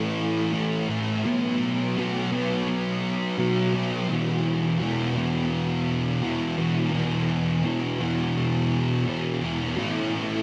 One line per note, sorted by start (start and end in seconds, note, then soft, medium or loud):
0.00 0.52 E3 medium
0.00 0.53 A3 medium
0.52 1.22 A2 medium
0.52 0.89 E3 medium
0.52 0.88 A3 medium
0.89 1.23 E3 medium
0.89 1.23 A3 medium
1.25 1.95 B2 medium
1.25 1.97 F#3 loud
1.25 1.98 B3 loud
1.97 2.67 B2 medium
1.97 2.33 F#3 medium
1.97 2.31 B3 loud
2.32 3.37 F#3 medium
2.32 3.39 B3 medium
3.38 4.07 B2 medium
3.38 3.74 F#3 medium
3.38 3.73 B3 medium
3.73 4.08 F#3 medium
3.73 7.23 B3 medium
4.09 4.79 E2 medium
4.09 4.79 B2 medium
4.09 4.81 E3 medium
4.79 6.21 E2 medium
4.79 5.16 B2 medium
4.79 5.15 E3 medium
5.15 6.21 B2 medium
5.15 6.23 E3 medium
6.22 6.91 E2 medium
6.22 6.58 B2 medium
6.22 6.57 E3 medium
6.58 6.92 B2 medium
6.58 6.94 E3 medium
6.92 7.62 E2 medium
6.92 7.63 B2 medium
6.92 7.65 E3 medium
7.64 8.35 E2 medium
7.64 8.01 B2 medium
7.64 8.00 E3 medium
8.00 9.06 B2 medium
8.00 9.07 E3 medium
9.06 9.75 E2 medium
9.06 9.43 B2 medium
9.06 9.40 E3 medium
9.42 9.77 B2 medium
9.42 9.75 E3 medium
9.77 10.43 A2 medium
9.77 10.43 E3 medium
9.77 10.43 A3 medium